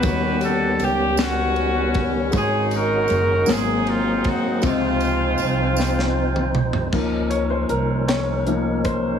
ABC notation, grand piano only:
X:1
M:6/8
L:1/16
Q:3/8=52
K:Db
V:1 name="Grand piano"
[=G,=B,E^Fd]12 | [A,EGcd]6 [G,B,Ac]6 | [CFce]12 | z2 d c B2 d4 c2 |]
V:2 name="Grand piano" clef=bass
E,6 z6 | A,,6 A,,6 | C,6 z6 | [F,B,E]2 z6 [F,B,E]2 z2 |]